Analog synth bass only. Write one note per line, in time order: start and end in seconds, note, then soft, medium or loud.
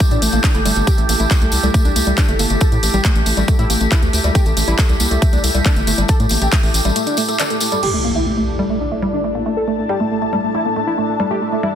0.11 0.17 A2 medium
0.22 0.28 A1 loud
0.33 0.39 A1 medium
0.55 0.61 G1 medium
0.65 0.72 G1 loud
0.76 0.83 G1 loud
0.98 1.04 A1 medium
1.09 1.15 A1 loud
1.20 1.26 A1 medium
1.42 1.48 C2 medium
1.52 1.59 C2 loud
1.63 1.70 C2 medium
1.85 1.91 C2 medium
1.96 2.02 C2 loud
2.07 2.13 C2 medium
2.29 2.35 G1 medium
2.39 2.46 G1 loud
2.50 2.57 G1 loud
2.72 2.78 A2 medium
2.83 2.89 A1 loud
2.94 3.00 A1 medium
3.15 3.22 A1 medium
3.26 3.33 A1 loud
3.37 3.44 A1 medium
3.59 3.65 A2 medium
3.70 3.76 A1 loud
3.81 3.87 A1 medium
4.02 4.09 D2 medium
4.13 4.20 D2 loud
4.24 4.31 D2 loud
4.46 4.52 A1 medium
4.57 4.63 A1 loud
4.68 4.74 A1 medium
4.89 4.96 C2 medium
5.00 5.07 C2 loud
5.11 5.18 C2 medium
5.33 5.39 C2 medium
5.44 5.50 C2 loud
5.55 5.61 C2 medium
5.76 5.83 G1 medium
5.87 5.94 G1 loud
5.98 6.04 G1 medium
6.20 6.26 A2 medium
6.31 6.37 A1 loud
6.42 6.48 A1 medium
6.63 6.70 A1 medium
6.74 6.81 A1 loud
6.85 6.91 A1 medium